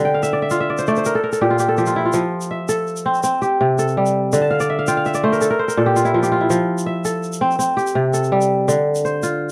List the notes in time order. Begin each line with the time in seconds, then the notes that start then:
Already playing: D3 C4 A4
0.05 G5
0.14 F5
0.23 E5, shaker
0.33 D5
0.42 E5
0.50 F4 F5, shaker
0.60 E5
0.70 D5
0.78 C5, shaker
0.87 A3 D5, shaker
0.96 C5, shaker
1.05 A#4, shaker
1.15 A4
1.24 A#4
1.32 A4, shaker
1.41 A#2 G4
1.50 F4
1.59 G4, shaker
1.68 A4
1.77 F3 G4, shaker
1.86 F4, shaker
1.96 E4
2.05 F4
2.13 F3, shaker
2.41 shaker
2.51 E5
2.69 A4, shaker
2.87 shaker
2.96 shaker
3.06 C4
3.14 shaker
3.23 C4, shaker
3.42 G4, shaker
3.61 C3
3.79 A4, shaker
3.88 shaker
3.97 G3
4.06 shaker
4.33 D3, shaker
4.42 A5
4.50 F5
4.60 D5, shaker
4.70 E5
4.79 F5
4.87 F4 G5, shaker
4.97 F5
5.05 E5, shaker
5.14 D5, shaker
5.24 A3 C5
5.32 A#4, shaker
5.41 A4, shaker
5.50 A#4
5.59 C5
5.68 A#4, shaker
5.77 A#2 A4
5.86 G4
5.96 F4, shaker
6.05 E4, shaker
6.14 F3 F4
6.23 G4, shaker
6.32 F4
6.41 E4
6.50 F3, shaker
6.78 shaker
6.86 E5
7.05 A4, shaker
7.23 shaker
7.33 shaker
7.41 C4
7.51 shaker
7.59 C4, shaker
7.77 G4, shaker
7.87 shaker
7.95 C3
8.14 A4, shaker
8.24 shaker
8.32 G3
8.41 shaker
8.68 D3, shaker
8.95 shaker
9.05 C5, shaker
9.23 F4, shaker